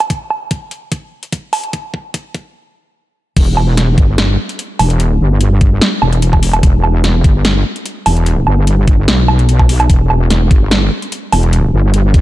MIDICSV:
0, 0, Header, 1, 3, 480
1, 0, Start_track
1, 0, Key_signature, 1, "minor"
1, 0, Tempo, 408163
1, 118, Time_signature, 4, 2, 24, 8
1, 14361, End_track
2, 0, Start_track
2, 0, Title_t, "Wobble bass"
2, 0, Program_c, 0, 39
2, 3958, Note_on_c, 0, 28, 98
2, 4660, Note_off_c, 0, 28, 0
2, 4678, Note_on_c, 0, 31, 93
2, 5140, Note_off_c, 0, 31, 0
2, 5638, Note_on_c, 0, 28, 98
2, 6100, Note_off_c, 0, 28, 0
2, 6118, Note_on_c, 0, 31, 94
2, 6820, Note_off_c, 0, 31, 0
2, 7078, Note_on_c, 0, 28, 97
2, 7780, Note_off_c, 0, 28, 0
2, 7798, Note_on_c, 0, 28, 99
2, 8500, Note_off_c, 0, 28, 0
2, 8518, Note_on_c, 0, 31, 97
2, 8980, Note_off_c, 0, 31, 0
2, 9478, Note_on_c, 0, 28, 96
2, 9940, Note_off_c, 0, 28, 0
2, 9958, Note_on_c, 0, 31, 96
2, 10660, Note_off_c, 0, 31, 0
2, 10678, Note_on_c, 0, 35, 99
2, 11620, Note_off_c, 0, 35, 0
2, 11638, Note_on_c, 0, 28, 95
2, 12340, Note_off_c, 0, 28, 0
2, 12358, Note_on_c, 0, 31, 94
2, 12820, Note_off_c, 0, 31, 0
2, 13318, Note_on_c, 0, 28, 94
2, 13780, Note_off_c, 0, 28, 0
2, 13798, Note_on_c, 0, 31, 97
2, 14361, Note_off_c, 0, 31, 0
2, 14361, End_track
3, 0, Start_track
3, 0, Title_t, "Drums"
3, 4, Note_on_c, 9, 42, 53
3, 4, Note_on_c, 9, 77, 75
3, 118, Note_off_c, 9, 42, 0
3, 118, Note_on_c, 9, 36, 101
3, 118, Note_on_c, 9, 42, 76
3, 121, Note_off_c, 9, 77, 0
3, 235, Note_off_c, 9, 36, 0
3, 235, Note_off_c, 9, 42, 0
3, 358, Note_on_c, 9, 77, 58
3, 475, Note_off_c, 9, 77, 0
3, 598, Note_on_c, 9, 36, 102
3, 598, Note_on_c, 9, 42, 79
3, 715, Note_off_c, 9, 36, 0
3, 715, Note_off_c, 9, 42, 0
3, 838, Note_on_c, 9, 42, 53
3, 955, Note_off_c, 9, 42, 0
3, 1078, Note_on_c, 9, 36, 104
3, 1078, Note_on_c, 9, 42, 82
3, 1195, Note_off_c, 9, 36, 0
3, 1195, Note_off_c, 9, 42, 0
3, 1444, Note_on_c, 9, 42, 54
3, 1558, Note_off_c, 9, 42, 0
3, 1558, Note_on_c, 9, 36, 103
3, 1558, Note_on_c, 9, 42, 81
3, 1675, Note_off_c, 9, 36, 0
3, 1675, Note_off_c, 9, 42, 0
3, 1797, Note_on_c, 9, 46, 90
3, 1797, Note_on_c, 9, 77, 76
3, 1915, Note_off_c, 9, 46, 0
3, 1915, Note_off_c, 9, 77, 0
3, 1923, Note_on_c, 9, 42, 53
3, 2038, Note_off_c, 9, 42, 0
3, 2038, Note_on_c, 9, 36, 100
3, 2038, Note_on_c, 9, 42, 76
3, 2155, Note_off_c, 9, 36, 0
3, 2155, Note_off_c, 9, 42, 0
3, 2278, Note_on_c, 9, 36, 105
3, 2395, Note_off_c, 9, 36, 0
3, 2518, Note_on_c, 9, 36, 102
3, 2518, Note_on_c, 9, 42, 77
3, 2635, Note_off_c, 9, 36, 0
3, 2635, Note_off_c, 9, 42, 0
3, 2758, Note_on_c, 9, 36, 105
3, 2758, Note_on_c, 9, 42, 51
3, 2875, Note_off_c, 9, 36, 0
3, 2876, Note_off_c, 9, 42, 0
3, 3958, Note_on_c, 9, 36, 119
3, 3958, Note_on_c, 9, 42, 79
3, 3958, Note_on_c, 9, 49, 99
3, 4076, Note_off_c, 9, 36, 0
3, 4076, Note_off_c, 9, 42, 0
3, 4076, Note_off_c, 9, 49, 0
3, 4198, Note_on_c, 9, 77, 63
3, 4316, Note_off_c, 9, 77, 0
3, 4438, Note_on_c, 9, 38, 60
3, 4438, Note_on_c, 9, 42, 81
3, 4556, Note_off_c, 9, 38, 0
3, 4556, Note_off_c, 9, 42, 0
3, 4678, Note_on_c, 9, 36, 111
3, 4678, Note_on_c, 9, 42, 54
3, 4796, Note_off_c, 9, 36, 0
3, 4796, Note_off_c, 9, 42, 0
3, 4918, Note_on_c, 9, 38, 120
3, 4918, Note_on_c, 9, 42, 87
3, 5035, Note_off_c, 9, 38, 0
3, 5035, Note_off_c, 9, 42, 0
3, 5284, Note_on_c, 9, 42, 56
3, 5398, Note_off_c, 9, 42, 0
3, 5398, Note_on_c, 9, 42, 82
3, 5516, Note_off_c, 9, 42, 0
3, 5638, Note_on_c, 9, 46, 97
3, 5638, Note_on_c, 9, 77, 79
3, 5756, Note_off_c, 9, 46, 0
3, 5756, Note_off_c, 9, 77, 0
3, 5764, Note_on_c, 9, 42, 56
3, 5878, Note_off_c, 9, 42, 0
3, 5878, Note_on_c, 9, 42, 80
3, 5996, Note_off_c, 9, 42, 0
3, 6358, Note_on_c, 9, 42, 84
3, 6475, Note_off_c, 9, 42, 0
3, 6598, Note_on_c, 9, 36, 112
3, 6598, Note_on_c, 9, 42, 56
3, 6716, Note_off_c, 9, 36, 0
3, 6716, Note_off_c, 9, 42, 0
3, 6838, Note_on_c, 9, 38, 127
3, 6838, Note_on_c, 9, 42, 89
3, 6956, Note_off_c, 9, 38, 0
3, 6956, Note_off_c, 9, 42, 0
3, 7078, Note_on_c, 9, 77, 75
3, 7196, Note_off_c, 9, 77, 0
3, 7204, Note_on_c, 9, 42, 58
3, 7318, Note_off_c, 9, 42, 0
3, 7318, Note_on_c, 9, 42, 86
3, 7436, Note_off_c, 9, 42, 0
3, 7444, Note_on_c, 9, 36, 64
3, 7444, Note_on_c, 9, 77, 52
3, 7558, Note_on_c, 9, 46, 98
3, 7561, Note_off_c, 9, 36, 0
3, 7562, Note_off_c, 9, 77, 0
3, 7676, Note_off_c, 9, 46, 0
3, 7684, Note_on_c, 9, 42, 57
3, 7684, Note_on_c, 9, 77, 75
3, 7798, Note_off_c, 9, 42, 0
3, 7798, Note_on_c, 9, 36, 127
3, 7798, Note_on_c, 9, 42, 82
3, 7802, Note_off_c, 9, 77, 0
3, 7916, Note_off_c, 9, 36, 0
3, 7916, Note_off_c, 9, 42, 0
3, 8038, Note_on_c, 9, 77, 61
3, 8156, Note_off_c, 9, 77, 0
3, 8278, Note_on_c, 9, 38, 64
3, 8278, Note_on_c, 9, 42, 79
3, 8396, Note_off_c, 9, 38, 0
3, 8396, Note_off_c, 9, 42, 0
3, 8518, Note_on_c, 9, 36, 117
3, 8518, Note_on_c, 9, 42, 52
3, 8636, Note_off_c, 9, 36, 0
3, 8636, Note_off_c, 9, 42, 0
3, 8758, Note_on_c, 9, 38, 127
3, 8758, Note_on_c, 9, 42, 87
3, 8876, Note_off_c, 9, 38, 0
3, 8876, Note_off_c, 9, 42, 0
3, 9124, Note_on_c, 9, 42, 53
3, 9238, Note_off_c, 9, 42, 0
3, 9238, Note_on_c, 9, 42, 80
3, 9356, Note_off_c, 9, 42, 0
3, 9478, Note_on_c, 9, 46, 90
3, 9478, Note_on_c, 9, 77, 78
3, 9596, Note_off_c, 9, 46, 0
3, 9596, Note_off_c, 9, 77, 0
3, 9604, Note_on_c, 9, 42, 54
3, 9718, Note_off_c, 9, 42, 0
3, 9718, Note_on_c, 9, 42, 75
3, 9836, Note_off_c, 9, 42, 0
3, 9958, Note_on_c, 9, 77, 61
3, 10076, Note_off_c, 9, 77, 0
3, 10198, Note_on_c, 9, 42, 79
3, 10316, Note_off_c, 9, 42, 0
3, 10438, Note_on_c, 9, 36, 112
3, 10438, Note_on_c, 9, 42, 52
3, 10556, Note_off_c, 9, 36, 0
3, 10556, Note_off_c, 9, 42, 0
3, 10678, Note_on_c, 9, 38, 127
3, 10678, Note_on_c, 9, 42, 82
3, 10796, Note_off_c, 9, 38, 0
3, 10796, Note_off_c, 9, 42, 0
3, 10918, Note_on_c, 9, 77, 78
3, 11036, Note_off_c, 9, 77, 0
3, 11044, Note_on_c, 9, 42, 51
3, 11158, Note_off_c, 9, 42, 0
3, 11158, Note_on_c, 9, 42, 77
3, 11276, Note_off_c, 9, 42, 0
3, 11284, Note_on_c, 9, 36, 62
3, 11284, Note_on_c, 9, 77, 53
3, 11398, Note_on_c, 9, 46, 90
3, 11401, Note_off_c, 9, 36, 0
3, 11401, Note_off_c, 9, 77, 0
3, 11516, Note_off_c, 9, 46, 0
3, 11524, Note_on_c, 9, 42, 53
3, 11524, Note_on_c, 9, 77, 78
3, 11638, Note_off_c, 9, 42, 0
3, 11638, Note_on_c, 9, 36, 119
3, 11638, Note_on_c, 9, 42, 74
3, 11642, Note_off_c, 9, 77, 0
3, 11756, Note_off_c, 9, 36, 0
3, 11756, Note_off_c, 9, 42, 0
3, 11878, Note_on_c, 9, 77, 64
3, 11996, Note_off_c, 9, 77, 0
3, 12118, Note_on_c, 9, 38, 61
3, 12118, Note_on_c, 9, 42, 78
3, 12236, Note_off_c, 9, 38, 0
3, 12236, Note_off_c, 9, 42, 0
3, 12358, Note_on_c, 9, 36, 109
3, 12358, Note_on_c, 9, 42, 51
3, 12475, Note_off_c, 9, 36, 0
3, 12476, Note_off_c, 9, 42, 0
3, 12598, Note_on_c, 9, 38, 123
3, 12598, Note_on_c, 9, 42, 79
3, 12716, Note_off_c, 9, 38, 0
3, 12716, Note_off_c, 9, 42, 0
3, 12964, Note_on_c, 9, 42, 52
3, 13078, Note_off_c, 9, 42, 0
3, 13078, Note_on_c, 9, 42, 78
3, 13196, Note_off_c, 9, 42, 0
3, 13318, Note_on_c, 9, 46, 91
3, 13318, Note_on_c, 9, 77, 80
3, 13436, Note_off_c, 9, 46, 0
3, 13436, Note_off_c, 9, 77, 0
3, 13444, Note_on_c, 9, 42, 51
3, 13558, Note_off_c, 9, 42, 0
3, 13558, Note_on_c, 9, 42, 76
3, 13676, Note_off_c, 9, 42, 0
3, 14038, Note_on_c, 9, 42, 77
3, 14156, Note_off_c, 9, 42, 0
3, 14278, Note_on_c, 9, 36, 107
3, 14278, Note_on_c, 9, 42, 50
3, 14361, Note_off_c, 9, 36, 0
3, 14361, Note_off_c, 9, 42, 0
3, 14361, End_track
0, 0, End_of_file